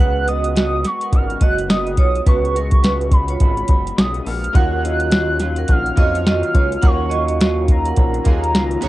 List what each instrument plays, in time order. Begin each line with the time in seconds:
Already playing: analog synth bass C#2, clean electric guitar C#3, vibraphone B4 F#5
0.00 clean electric guitar G#3 B3 F#4, soft synth lead F#6
0.26 clean electric guitar G#3 B3 F#4, vibraphone F#4 D#5, soft synth lead D#6, closed hi-hat
0.44 closed hi-hat
0.55 clean electric guitar C#3 G#3 B3 F#4, vibraphone F#4 D#5, soft synth lead D#6, snare, closed hi-hat
0.83 clean electric guitar G#3 B3 F#4, soft synth lead C#6, snare, closed hi-hat
1.01 vibraphone A#4 F#5, closed hi-hat
1.11 analog synth bass G#1, clean electric guitar C#3 G#3 B3 F#4, soft synth lead F6, kick, closed hi-hat
1.30 closed hi-hat
1.40 analog synth bass F#1, clean electric guitar G#3 B3 F#4, vibraphone F#4 D#5, soft synth lead F#6, kick, closed hi-hat
1.58 closed hi-hat
1.69 clean electric guitar C#3 G#3 B3 F#4, vibraphone F#4 D#5, soft synth lead D#6, snare, closed hi-hat
1.87 closed hi-hat
1.97 analog synth bass B1, clean electric guitar G#3 B3 F#4, vibraphone F4 C#5, soft synth lead D#6, kick, closed hi-hat
2.15 closed hi-hat
2.26 analog synth bass C#2, clean electric guitar C#3 G#3 B3 F#4, vibraphone F#4 B4, soft synth lead C#6, kick, closed hi-hat
2.45 closed hi-hat
2.55 clean electric guitar G#3 B3 F#4, vibraphone C#4 A#4, closed hi-hat
2.71 kick, closed hi-hat
2.83 clean electric guitar C#3 G#3 B3 F#4, vibraphone F#4 B4, snare, closed hi-hat
3.01 closed hi-hat
3.11 clean electric guitar G#3 B3 F#4, soft synth lead B5, kick, closed hi-hat
3.28 vibraphone F4 C#5, closed hi-hat
3.40 analog synth bass G#1, clean electric guitar C#3 G#3 B3 F#4, kick, closed hi-hat
3.57 closed hi-hat
3.68 analog synth bass F#1, clean electric guitar G#3 B3 F#4, kick, closed hi-hat
3.87 closed hi-hat
3.96 analog synth bass B1, clean electric guitar C#3 G#3 B3 F#4, soft synth lead D#6, snare, closed hi-hat
4.14 closed hi-hat
4.26 analog synth bass A#1, clean electric guitar G#3 B3 F#4, soft synth lead F6, open hi-hat
4.44 closed hi-hat
4.53 analog synth bass D#2, clean electric guitar D#3 F#3 C#4 F4, synth keys A#3 D#4 F4 F#4 C#5, vibraphone A#4 F#5, soft synth lead F#6, kick, closed hi-hat
4.82 clean electric guitar F#3 C#4 F4, vibraphone F#4 D#5, closed hi-hat
5.00 closed hi-hat
5.11 clean electric guitar D#3 F#3 C#4 F4, vibraphone D#5, snare, closed hi-hat
5.15 vibraphone F#4
5.40 clean electric guitar F#3 C#4 F4, snare, closed hi-hat
5.56 vibraphone A#4 F#5, closed hi-hat
5.68 analog synth bass A#1, clean electric guitar D#3 F#3 C#4 F4, soft synth lead F6, kick, closed hi-hat
5.86 closed hi-hat
5.96 analog synth bass F2, synth keys A#3 D#4 F4 F#4 C#5, clean electric guitar C#4 F4, vibraphone F#4 D#5, kick, closed hi-hat
6.01 clean electric guitar F#3
6.15 closed hi-hat
6.26 clean electric guitar D#3 F#3 C#4 F4, vibraphone F#4 D#5, snare, closed hi-hat
6.43 closed hi-hat
6.54 analog synth bass C#2, clean electric guitar F#3 C#4 F4, vibraphone F4 C#5, kick, closed hi-hat
6.72 closed hi-hat
6.82 analog synth bass D#2, clean electric guitar D#3 F#3 C#4 F4, synth keys A#3 D#4 F4 F#4 C#5, vibraphone A#4 F#5, kick, closed hi-hat
6.86 soft synth lead C#6
7.10 clean electric guitar C#4 F4, vibraphone F#4 D#5, closed hi-hat
7.14 clean electric guitar F#3
7.28 closed hi-hat
7.40 clean electric guitar D#3 F#3 C#4 F4, vibraphone F#4 D#5, snare, closed hi-hat
7.68 clean electric guitar F#3 C#4 F4, soft synth lead A#5, kick, closed hi-hat
7.85 vibraphone A#4 F#5, closed hi-hat
7.96 analog synth bass A#1, clean electric guitar D#3 F#3 C#4 F4, kick, closed hi-hat
8.14 closed hi-hat
8.24 analog synth bass D#2, clean electric guitar F#3 C#4 F4, synth keys A#3 D#4 F4 F#4 G#4, kick, closed hi-hat
8.44 closed hi-hat
8.54 analog synth bass C#2, clean electric guitar D#3 F#3 C#4 F4, snare, closed hi-hat
8.71 closed hi-hat
8.81 analog synth bass C#2, clean electric guitar G#3 B3 F#4, synth keys B3 C#4 F#4 G#4 C#5, closed hi-hat